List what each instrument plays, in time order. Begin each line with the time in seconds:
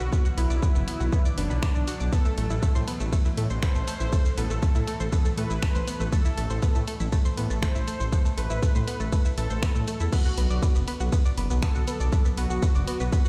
Already playing: synth drone B2 F#3, ambient pad D3 E3 B3, supersaw synth F#4
0.00 detuned saw bass B1, synth arpeggio sound B3 B4, shaker
0.12 synth arpeggio sound B3 B4, kick, shaker
0.25 synth arpeggio sound F#4 F#5, shaker
0.37 detuned saw bass B1, synth arpeggio sound B3 B4, supersaw synth E4, open hi-hat, shaker
0.50 detuned saw bass B1, synth arpeggio sound D5 D6, shaker
0.63 synth arpeggio sound B3 B4, kick, shaker
0.75 detuned saw bass F#1, synth arpeggio sound B3 B4, shaker
0.87 synth arpeggio sound B3 B4, open hi-hat, shaker
1.00 detuned saw bass B1, synth arpeggio sound F#4 F#5, shaker
1.12 synth arpeggio sound B3 B4, kick, shaker
1.25 synth arpeggio sound D5 D6, shaker
1.38 detuned saw bass F#1, synth arpeggio sound B3 B4, supersaw synth D4, open hi-hat, shaker
1.50 detuned saw bass B1, synth arpeggio sound B3 B4, shaker
1.63 synth arpeggio sound D4 D5, finger snap, kick, shaker
1.75 detuned saw bass B1, synth arpeggio sound D4 D5, shaker
1.88 synth arpeggio sound F#4 F#5, open hi-hat, shaker
2.00 detuned saw bass B1, synth arpeggio sound D5 D6, shaker
2.13 ambient pad A3 A4, synth arpeggio sound B3 B4, supersaw synth A4, kick, ride, shaker
2.25 synth arpeggio sound A3 A4, shaker
2.38 detuned saw bass A1, synth arpeggio sound A3 A4, open hi-hat, shaker
2.50 detuned saw bass A1, synth arpeggio sound E4 E5, shaker
2.63 synth arpeggio sound A3 A4, kick, ride, shaker
2.75 detuned saw bass A2, synth arpeggio sound C5 C6, shaker
2.88 synth arpeggio sound B3 B4, open hi-hat, shaker
3.00 detuned saw bass A1, synth arpeggio sound A3 A4, shaker
3.13 synth arpeggio sound A3 A4, kick, ride, shaker
3.25 synth arpeggio sound E4 E5, shaker
3.38 detuned saw bass A2, synth arpeggio sound A3 A4, open hi-hat
3.50 detuned saw bass A1, synth arpeggio sound C5 C6, shaker
3.63 synth arpeggio sound B3 B4, supersaw synth C5, finger snap, kick, ride, shaker
3.75 detuned saw bass A1, synth arpeggio sound A3 A4, shaker
3.88 synth arpeggio sound A3 A4, open hi-hat, shaker
4.00 detuned saw bass A1, synth arpeggio sound E4 E5, shaker
4.13 synth arpeggio sound A3 A4, kick, ride, shaker
4.25 synth arpeggio sound C5 C6, shaker
4.37 detuned saw bass A1, synth arpeggio sound B3 B4, supersaw synth A4, open hi-hat, shaker
4.50 detuned saw bass A1, synth arpeggio sound A3 A4, shaker
4.62 synth arpeggio sound A3 A4, kick, ride, shaker
4.75 detuned saw bass A2, synth arpeggio sound E4 E5, shaker
4.87 synth arpeggio sound A3 A4, open hi-hat, shaker
5.00 detuned saw bass A1, synth arpeggio sound C5 C6, shaker
5.12 synth arpeggio sound B3 B4, kick, ride, shaker
5.25 synth arpeggio sound A3 A4, shaker
5.38 detuned saw bass A2, synth arpeggio sound A3 A4, supersaw synth B4, open hi-hat
5.50 detuned saw bass A1, synth arpeggio sound E4 E5, shaker
5.62 synth arpeggio sound A3 A4, finger snap, kick, ride, shaker
5.75 detuned saw bass A1, synth arpeggio sound C5 C6, shaker
5.88 synth arpeggio sound B3 B4, open hi-hat, shaker
6.00 detuned saw bass A1, synth arpeggio sound A3 A4, shaker
6.12 synth arpeggio sound A3 A4, supersaw synth A4, kick, ride, shaker
6.25 synth arpeggio sound E4 E5, shaker
6.37 detuned saw bass A1, synth arpeggio sound A3 A4, open hi-hat, shaker
6.50 detuned saw bass A1, synth arpeggio sound C5 C6, shaker
6.62 synth arpeggio sound B3 B4, kick, ride, shaker
6.75 detuned saw bass A2, synth arpeggio sound A3 A4, shaker
6.88 synth arpeggio sound A3 A4, open hi-hat, shaker
7.00 detuned saw bass A1, synth arpeggio sound E4 E5, shaker
7.12 synth arpeggio sound A3 A4, kick, ride, shaker
7.25 synth arpeggio sound C5 C6, shaker
7.37 detuned saw bass A2, synth arpeggio sound B3 B4, open hi-hat
7.50 detuned saw bass A1, synth arpeggio sound A3 A4, shaker
7.62 synth arpeggio sound A3 A4, supersaw synth C5, finger snap, kick, ride, shaker
7.75 detuned saw bass A1, synth arpeggio sound E4 E5, shaker
7.87 synth arpeggio sound A3 A4, open hi-hat, shaker
8.00 detuned saw bass A1, synth arpeggio sound C5 C6, shaker
8.12 synth arpeggio sound B3 B4, kick, ride, shaker
8.25 synth arpeggio sound A3 A4, shaker
8.37 detuned saw bass A1, synth arpeggio sound A3 A4, supersaw synth B4, open hi-hat, shaker
8.50 detuned saw bass A1, synth arpeggio sound E4 E5, shaker
8.63 synth arpeggio sound A3 A4, kick, ride, shaker
8.75 detuned saw bass A2, synth arpeggio sound C5 C6, shaker
8.88 synth arpeggio sound B3 B4, open hi-hat, shaker
9.00 detuned saw bass A1, synth arpeggio sound A3 A4, shaker
9.12 synth arpeggio sound A3 A4, kick, ride, shaker
9.25 synth arpeggio sound E4 E5, shaker
9.38 detuned saw bass A1, synth arpeggio sound A3 A4, supersaw synth A4, open hi-hat, shaker
9.50 detuned saw bass A1, synth arpeggio sound C5 C6, shaker
9.63 synth arpeggio sound B3 B4, finger snap, kick, ride, shaker
9.75 detuned saw bass A2, synth arpeggio sound A3 A4, shaker
9.88 synth arpeggio sound A3 A4, open hi-hat, shaker
10.00 detuned saw bass E2, synth arpeggio sound E4 E5, shaker
10.13 ambient pad D3 F#3 B3, synth arpeggio sound B3 B4, supersaw synth F#4, kick, crash, ride, shaker
10.25 synth arpeggio sound F#4 F#5, shaker
10.38 detuned saw bass B1, synth arpeggio sound B3 B4, open hi-hat, shaker
10.50 detuned saw bass B1, synth arpeggio sound D5 D6, shaker
10.63 synth arpeggio sound B3 B4, kick, ride, shaker
10.75 detuned saw bass F#1, synth arpeggio sound B3 B4, shaker
10.88 synth arpeggio sound B3 B4, open hi-hat, shaker
11.00 detuned saw bass B1, synth arpeggio sound F#4 F#5, shaker
11.13 synth arpeggio sound B3 B4, kick, ride, shaker
11.25 synth arpeggio sound D5 D6, shaker
11.38 detuned saw bass F#1, synth arpeggio sound B3 B4, open hi-hat
11.50 detuned saw bass B1, synth arpeggio sound B3 B4, shaker
11.62 synth arpeggio sound B3 B4, supersaw synth A4, finger snap, kick, ride, shaker
11.75 detuned saw bass B1, synth arpeggio sound F#4 F#5, shaker
11.88 synth arpeggio sound B3 B4, open hi-hat, shaker
12.00 detuned saw bass B1, synth arpeggio sound D5 D6, shaker
12.12 synth arpeggio sound B3 B4, kick, ride, shaker
12.25 synth arpeggio sound B3 B4, shaker
12.37 detuned saw bass B1, synth arpeggio sound B3 B4, supersaw synth F#4, open hi-hat, shaker
12.50 detuned saw bass B1, synth arpeggio sound F#4 F#5, shaker
12.63 synth arpeggio sound B3 B4, kick, ride, shaker
12.75 detuned saw bass F#1, synth arpeggio sound D5 D6, shaker
12.88 synth arpeggio sound B3 B4, open hi-hat, shaker
13.00 detuned saw bass B1, synth arpeggio sound B3 B4, shaker
13.13 synth arpeggio sound B3 B4, kick, ride, shaker
13.25 synth arpeggio sound F#4 F#5, shaker